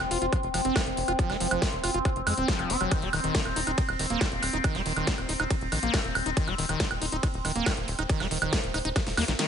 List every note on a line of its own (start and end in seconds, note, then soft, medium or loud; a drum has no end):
0.00 0.07 F1 medium
0.00 9.48 C4 medium
0.00 closed hi-hat soft
0.00 high woodblock medium
0.11 0.17 F1 loud
0.11 0.18 F4 medium
0.11 open hi-hat loud
0.22 0.28 F1 medium
0.22 0.26 F4 medium
0.22 closed hi-hat medium
0.33 0.37 F3 medium
0.33 kick loud
0.33 closed hi-hat medium
0.33 high woodblock soft
0.43 0.50 F1 medium
0.43 closed hi-hat soft
0.54 0.61 F1 loud
0.54 0.61 F3 medium
0.54 open hi-hat loud
0.54 high woodblock soft
0.65 0.71 F1 medium
0.65 0.77 C4 loud
0.65 closed hi-hat medium
0.76 0.83 D#3 medium
0.76 kick loud
0.76 snare loud
0.76 closed hi-hat medium
0.76 high woodblock medium
0.87 0.93 F1 medium
0.87 closed hi-hat soft
0.97 1.04 F1 loud
0.97 open hi-hat loud
1.08 1.15 F1 medium
1.08 1.12 F4 medium
1.08 closed hi-hat medium
1.08 high woodblock soft
1.19 1.31 F3 medium
1.19 kick loud
1.19 closed hi-hat soft
1.30 1.36 F1 medium
1.30 1.37 G#3 loud
1.30 snare soft
1.30 closed hi-hat soft
1.30 high woodblock soft
1.40 1.47 F1 loud
1.40 1.47 F3 medium
1.40 open hi-hat loud
1.51 1.58 F1 medium
1.51 1.64 F3 medium
1.51 closed hi-hat medium
1.51 high woodblock medium
1.62 1.69 D#3 medium
1.62 kick loud
1.62 snare loud
1.62 closed hi-hat medium
1.73 1.79 F1 medium
1.73 closed hi-hat soft
1.84 1.90 F1 loud
1.84 1.91 F4 medium
1.84 open hi-hat loud
1.84 high woodblock soft
1.94 2.01 F1 medium
1.94 1.99 F4 medium
1.94 closed hi-hat soft
2.05 2.09 F3 medium
2.05 kick loud
2.05 closed hi-hat soft
2.05 high woodblock soft
2.16 2.23 F1 medium
2.16 closed hi-hat soft
2.27 2.33 F2 loud
2.27 2.34 G#3 medium
2.27 open hi-hat loud
2.27 high woodblock medium
2.38 2.44 D#1 medium
2.38 2.48 C4 medium
2.38 closed hi-hat soft
2.48 2.71 F3 loud
2.48 kick loud
2.48 snare loud
2.48 closed hi-hat medium
2.59 2.66 F1 medium
2.59 closed hi-hat soft
2.59 high woodblock soft
2.70 2.76 F1 loud
2.70 2.77 C4 medium
2.70 open hi-hat loud
2.81 2.87 F1 medium
2.81 2.91 F#3 medium
2.81 closed hi-hat medium
2.81 high woodblock soft
2.91 3.04 D#3 medium
2.91 kick loud
2.91 closed hi-hat soft
2.91 ride medium
2.91 high woodblock soft
3.02 3.09 D#1 medium
3.02 3.09 G3 loud
3.02 closed hi-hat soft
3.13 3.20 D#1 loud
3.13 3.20 D#3 medium
3.13 open hi-hat loud
3.13 high woodblock medium
3.24 3.30 D#1 medium
3.24 3.36 D#3 medium
3.24 closed hi-hat soft
3.35 3.42 D3 medium
3.35 kick loud
3.35 snare loud
3.35 closed hi-hat medium
3.35 ride medium
3.45 3.52 D#1 medium
3.45 closed hi-hat soft
3.45 high woodblock soft
3.56 3.63 D#1 loud
3.56 3.60 D#4 medium
3.56 open hi-hat loud
3.67 3.74 D#1 medium
3.67 3.71 D#4 medium
3.67 closed hi-hat soft
3.67 high woodblock soft
3.78 3.82 D#3 medium
3.78 kick loud
3.78 closed hi-hat medium
3.78 ride medium
3.89 3.95 D#1 medium
3.89 closed hi-hat soft
3.89 high woodblock medium
3.99 4.06 D#1 loud
3.99 4.06 D#3 medium
3.99 open hi-hat loud
4.10 4.17 D#1 medium
4.10 4.23 A#3 loud
4.10 closed hi-hat medium
4.21 4.28 D3 medium
4.21 kick loud
4.21 snare loud
4.21 closed hi-hat soft
4.21 ride medium
4.21 high woodblock soft
4.32 4.38 D#1 medium
4.32 closed hi-hat soft
4.43 4.49 D#1 loud
4.43 open hi-hat loud
4.43 high woodblock soft
4.53 4.60 D#1 medium
4.53 4.58 D#4 medium
4.53 closed hi-hat medium
4.64 4.76 D#3 medium
4.64 kick loud
4.64 closed hi-hat medium
4.64 ride medium
4.64 high woodblock medium
4.75 4.82 D#1 medium
4.75 4.82 G3 loud
4.75 snare soft
4.75 closed hi-hat soft
4.86 4.92 D#1 medium
4.86 4.93 D#3 medium
4.86 open hi-hat loud
4.96 5.03 D#1 medium
4.96 5.09 D#3 medium
4.96 closed hi-hat soft
4.96 high woodblock soft
5.07 5.14 D3 medium
5.07 kick loud
5.07 snare loud
5.07 closed hi-hat medium
5.07 ride medium
5.18 5.25 D#1 medium
5.18 closed hi-hat soft
5.18 high woodblock soft
5.29 5.35 D#1 loud
5.29 5.33 D#4 medium
5.29 open hi-hat loud
5.40 5.46 D#1 loud
5.40 5.44 D#4 medium
5.40 closed hi-hat soft
5.40 high woodblock medium
5.50 5.55 D#3 medium
5.50 kick loud
5.50 closed hi-hat medium
5.50 ride medium
5.61 5.68 D#1 medium
5.61 closed hi-hat soft
5.72 5.79 A#1 loud
5.72 5.79 D#3 medium
5.72 open hi-hat loud
5.72 high woodblock soft
5.83 5.89 A#1 medium
5.83 5.95 A#3 medium
5.83 closed hi-hat medium
5.94 6.01 D3 medium
5.94 kick loud
5.94 snare loud
5.94 closed hi-hat medium
5.94 ride medium
5.94 high woodblock soft
6.04 6.11 D#1 medium
6.04 closed hi-hat soft
6.15 6.22 D#1 loud
6.15 open hi-hat loud
6.15 high woodblock medium
6.26 6.33 D#1 medium
6.26 6.30 D#4 medium
6.26 closed hi-hat medium
6.37 6.49 D#3 medium
6.37 kick loud
6.37 closed hi-hat medium
6.37 ride medium
6.48 6.54 D#1 medium
6.48 6.55 G3 loud
6.48 closed hi-hat soft
6.48 high woodblock soft
6.58 6.65 D#1 loud
6.58 6.65 D#3 medium
6.58 open hi-hat loud
6.69 6.76 D#1 medium
6.69 6.82 D#3 medium
6.69 closed hi-hat medium
6.69 high woodblock soft
6.80 6.87 D3 medium
6.80 kick loud
6.80 snare loud
6.80 closed hi-hat medium
6.80 ride medium
6.91 6.97 D#1 medium
6.91 closed hi-hat soft
6.91 high woodblock medium
7.02 7.08 D#1 loud
7.02 7.06 D#4 medium
7.02 open hi-hat loud
7.12 7.19 D#1 loud
7.12 7.17 D#4 medium
7.12 closed hi-hat medium
7.23 7.27 D#3 medium
7.23 kick loud
7.23 closed hi-hat medium
7.23 ride medium
7.23 high woodblock soft
7.34 7.41 D#1 medium
7.34 closed hi-hat soft
7.45 7.51 D#1 loud
7.45 7.52 D#3 medium
7.45 open hi-hat loud
7.45 high woodblock soft
7.56 7.62 D#1 medium
7.56 7.68 A#3 loud
7.56 closed hi-hat medium
7.66 7.73 D3 medium
7.66 kick loud
7.66 snare loud
7.66 closed hi-hat medium
7.66 ride medium
7.66 high woodblock medium
7.77 7.84 D#1 medium
7.77 closed hi-hat soft
7.88 7.94 D#1 loud
7.88 open hi-hat loud
7.99 8.05 D#1 loud
7.99 8.03 D#4 medium
7.99 closed hi-hat medium
7.99 high woodblock soft
8.09 8.22 D#3 medium
8.09 kick loud
8.09 closed hi-hat medium
8.09 ride medium
8.20 8.27 D#1 medium
8.20 8.27 G3 loud
8.20 snare soft
8.20 closed hi-hat soft
8.20 high woodblock soft
8.31 8.38 D#1 loud
8.31 8.38 D#3 medium
8.31 open hi-hat loud
8.42 8.48 D#1 medium
8.42 8.54 D#3 medium
8.42 closed hi-hat medium
8.42 high woodblock medium
8.53 8.60 D3 medium
8.53 kick loud
8.53 snare loud
8.53 closed hi-hat medium
8.53 ride medium
8.63 8.70 D#1 medium
8.63 closed hi-hat soft
8.74 8.81 D#1 loud
8.74 8.78 D#4 medium
8.74 open hi-hat loud
8.74 high woodblock soft
8.85 8.92 D#1 loud
8.85 8.89 D#4 medium
8.85 closed hi-hat medium
8.96 9.00 D#3 medium
8.96 kick loud
8.96 snare medium
8.96 closed hi-hat medium
8.96 ride medium
8.96 high woodblock soft
9.07 9.13 D#1 medium
9.07 snare medium
9.07 open hi-hat medium
9.17 9.24 D#2 loud
9.17 9.24 A#3 medium
9.17 snare medium
9.17 open hi-hat loud
9.17 high woodblock medium
9.28 9.35 A#1 medium
9.28 9.32 D#3 medium
9.28 snare medium
9.28 closed hi-hat medium
9.39 9.46 D#3 medium
9.39 snare medium
9.39 closed hi-hat medium
9.39 ride medium